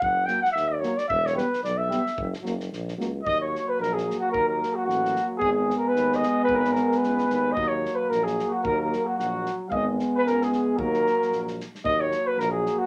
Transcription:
0.00 0.31 F#1 medium
0.00 0.27 F#5 loud
0.00 kick loud
0.25 0.39 F#3 medium
0.25 0.40 A#3 medium
0.25 0.41 G5 medium
0.25 snare soft
0.42 0.48 F#5 loud
0.42 snare soft
0.52 0.85 D#2 medium
0.52 0.70 E5 loud
0.56 snare soft
0.68 0.80 D5 medium
0.79 0.93 F#3 medium
0.79 0.99 C#5 medium
0.83 0.95 A#3 medium
0.83 snare soft
0.97 1.08 D5 medium
0.97 snare soft
1.08 1.39 E1 loud
1.08 1.27 E5 loud
1.08 kick medium
1.26 1.36 C#5 loud
1.26 snare soft
1.33 1.45 G3 medium
1.33 1.62 B4 medium
1.38 1.49 B3 medium
1.38 snare soft
1.53 snare soft
1.64 1.94 B1 medium
1.64 1.79 D5 medium
1.64 snare soft
1.78 2.32 E5 medium
1.89 2.00 G3 medium
1.89 2.02 B3 medium
1.89 snare soft
2.07 snare soft
2.17 2.32 F#1 loud
2.17 kick medium
2.34 snare soft
2.41 2.69 F#1 medium
2.41 2.53 F#3 medium
2.41 2.56 A#3 medium
2.46 snare soft
2.60 snare soft
2.72 2.96 A#1 medium
2.72 snare soft
2.88 snare soft
2.97 3.23 C#2 medium
2.97 3.08 F#3 medium
2.97 3.10 A#3 medium
2.97 snare soft
3.23 3.55 D#2 loud
3.23 5.42 F#3 medium
3.23 3.38 D#5 medium
3.27 5.40 A#3 medium
3.27 3.40 D#5 loud
3.27 kick medium
3.39 3.69 C#5 medium
3.39 3.71 C#5 medium
3.55 snare soft
3.68 3.80 B4 medium
3.80 4.09 A#1 medium
3.80 3.96 A#4 medium
3.80 3.95 A#4 medium
3.80 snare soft
3.93 4.18 G#4 medium
3.93 4.22 G#4 medium
3.98 snare soft
4.10 snare soft
4.19 4.31 F#4 medium
4.23 4.33 F#4 medium
4.32 4.63 D#2 loud
4.32 4.46 A#4 loud
4.32 4.48 A#4 medium
4.32 kick medium
4.48 4.77 A#4 medium
4.48 4.76 A#4 medium
4.63 snare soft
4.74 4.84 F#4 medium
4.74 4.85 F#4 medium
4.84 5.16 A1 medium
4.84 5.25 F#4 medium
4.90 snare soft
5.05 snare soft
5.16 snare soft
5.37 7.58 G#3 medium
5.37 7.57 B3 medium
5.37 5.51 G#4 loud
5.37 5.53 G#4 medium
5.41 5.71 G#1 loud
5.41 kick medium
5.52 5.77 G#4 medium
5.52 5.78 G#4 medium
5.70 snare soft
5.77 5.89 A#4 medium
5.77 5.91 A#4 medium
5.88 6.17 B4 loud
5.88 6.19 B4 medium
5.94 6.24 D#2 loud
5.94 snare soft
6.12 6.43 D#5 medium
6.12 snare soft
6.17 6.45 D#5 medium
6.23 snare soft
6.44 6.55 B4 loud
6.44 6.56 B4 medium
6.49 6.78 G#1 loud
6.49 kick medium
6.54 6.59 A#4 medium
6.54 6.63 A#4 medium
6.54 6.73 B4 loud
6.61 6.75 B4 medium
6.61 snare soft
6.72 6.98 A#4 medium
6.72 7.00 A#4 medium
6.72 snare soft
6.92 snare soft
6.97 7.53 B4 medium
6.97 7.56 B4 medium
7.02 7.26 C#2 medium
7.02 snare soft
7.18 snare soft
7.29 7.53 D#2 medium
7.29 snare soft
7.52 9.55 A#3 medium
7.52 7.69 D#5 loud
7.52 7.70 D#5 medium
7.56 7.87 D#2 loud
7.56 9.72 F#3 medium
7.56 kick medium
7.68 7.96 C#5 medium
7.68 7.98 C#5 medium
7.85 snare soft
7.95 8.11 B4 medium
7.95 8.10 B4 medium
8.09 8.40 A#1 medium
8.09 8.26 A#4 medium
8.09 8.25 A#4 medium
8.09 snare soft
8.24 8.54 G#4 medium
8.24 8.50 G#4 medium
8.24 snare soft
8.39 snare soft
8.49 8.62 F#4 medium
8.49 8.64 F#4 medium
8.63 8.94 D#2 loud
8.63 8.77 A#4 medium
8.63 8.79 A#4 loud
8.63 kick medium
8.78 9.07 A#4 medium
8.78 9.08 A#4 medium
8.93 snare soft
9.05 9.17 F#4 medium
9.05 9.18 F#4 medium
9.18 9.48 A#1 medium
9.18 9.56 F#4 medium
9.18 9.57 F#4 medium
9.18 snare soft
9.46 snare soft
9.69 10.00 G#1 loud
9.69 10.79 G#3 medium
9.69 10.79 B3 medium
9.69 9.86 D#5 medium
9.69 9.86 D#5 loud
9.69 9.73 F5 medium
9.69 9.72 F5 medium
9.69 kick medium
9.99 snare soft
10.15 10.25 B4 medium
10.15 10.26 B4 loud
10.25 10.54 C#2 medium
10.25 10.44 A#4 medium
10.25 10.44 A#4 loud
10.25 snare soft
10.42 10.49 G#4 medium
10.42 10.53 G#4 medium
10.42 snare soft
10.50 10.78 G#4 medium
10.50 10.81 G#4 medium
10.50 snare soft
10.77 11.08 D#2 loud
10.77 11.63 F#3 medium
10.77 11.64 A#3 medium
10.77 11.57 A#4 medium
10.77 11.59 A#4 loud
10.77 kick medium
10.94 snare soft
11.07 snare soft
11.22 snare soft
11.31 11.60 A#1 medium
11.31 snare soft
11.48 snare soft
11.60 snare soft
11.75 snare soft
11.84 12.13 D#2 loud
11.84 12.86 F#3 medium
11.84 12.86 A#3 medium
11.84 12.02 D#5 loud
11.84 kick medium
12.01 12.29 C#5 loud
12.11 snare soft
12.27 12.41 B4 medium
12.38 12.67 A#1 loud
12.38 12.50 A#4 loud
12.38 snare soft
12.51 12.80 G#4 medium
12.66 snare soft
12.78 12.86 F#4 loud

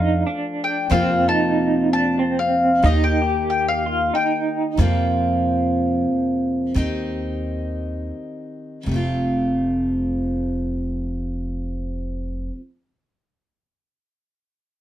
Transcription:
0.00 0.22 F2 loud
0.00 0.90 F3 medium
0.00 0.92 A3 medium
0.00 0.92 D4 medium
0.00 0.26 D#4 medium
0.00 0.93 F4 medium
0.00 0.64 F5 medium
0.27 0.90 D4 medium
0.64 0.91 G5 medium
0.90 2.84 F2 medium
0.90 1.26 F2 medium
0.90 2.84 C3 medium
0.90 2.82 F3 medium
0.90 2.84 A#3 medium
0.90 1.28 C4 medium
0.90 2.85 C4 medium
0.90 1.28 F5 medium
0.94 2.86 F4 medium
1.28 1.91 D#4 medium
1.28 1.89 A5 medium
1.93 2.19 D4 medium
1.93 2.39 A5 medium
2.19 2.83 C4 medium
2.39 2.86 F5 medium
2.82 4.09 D#2 medium
2.82 4.77 D#3 medium
2.82 4.78 A#3 medium
2.82 3.21 D#4 medium
2.82 4.79 D#4 medium
2.82 3.04 D#5 medium
2.87 4.79 G4 medium
3.04 3.49 G5 medium
3.22 3.85 G4 medium
3.50 3.68 G5 medium
3.68 4.15 F5 medium
3.86 4.13 F4 medium
4.14 4.77 D#4 medium
4.14 4.62 G5 medium
4.77 6.75 F2 medium
4.77 6.05 F2 medium
4.77 6.76 C3 medium
4.77 6.74 F3 medium
4.77 6.76 A#3 medium
4.77 6.76 C4 medium
4.82 6.77 F4 medium
6.74 8.10 D#2 medium
6.74 8.87 D#3 medium
6.74 8.87 C4 medium
6.74 8.88 D#4 medium
6.79 8.89 G4 medium
8.83 12.48 F1 medium
8.83 12.49 F2 medium
8.83 12.52 C3 medium
8.89 12.55 F3 medium
8.89 12.57 A3 medium
8.94 12.60 C4 medium
8.94 12.61 F4 medium

